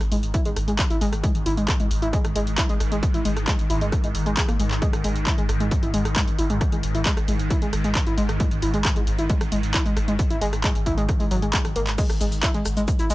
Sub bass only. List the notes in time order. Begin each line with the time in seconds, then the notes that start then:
0.01 G#1
0.12 G#1
0.23 G#1
0.45 G#1
0.56 G#1
0.68 G#1
0.90 G#1
1.01 G#1
1.12 G#1
1.35 G#1
1.46 G#1
1.57 G#1
1.80 G#1
1.91 G#1
2.02 G#1
2.24 G#1
2.35 G#1
2.47 G#1
2.69 G#1
2.80 G#1
2.92 G#1
3.14 G#1
3.25 G#1
3.36 G#1
3.59 G#1
3.70 G#1
3.81 G#1
4.04 G#1
4.15 G#1
4.26 G#1
4.48 G#1
4.59 G#1
4.71 G#1
4.93 G#1
5.04 G#1
5.16 G#1
5.38 G#1
5.49 G#1
5.60 G#1
5.83 G#1
5.94 G#1
6.05 G#1
6.28 G#1
6.39 G#1
6.50 G#1
6.72 G#1
6.83 G#1
6.95 G#1
7.17 G#1
7.28 G#1
7.39 G#1
7.62 G#1
7.73 G#1
7.84 G#1
8.07 G#1
8.18 G#1
8.29 G#1
8.51 G#1
8.62 G#1
8.74 G#1
8.96 G#1
9.07 G#1
9.19 G#1
9.41 G#1
9.52 G#1
9.63 G#1
9.86 G#1
9.97 G#1
10.08 G#1
10.31 G#1
10.42 G#1
10.53 G#1
10.75 G#1
10.86 G#1
10.98 G#1
11.20 G#1
11.31 G#1
11.43 G#1
11.65 G#1
11.76 G#1
11.87 G#1
12.10 G#1
12.21 G#1
12.32 G#1
12.54 G#1
12.65 G#1
12.77 G#1
12.99 G#1
13.10 G#1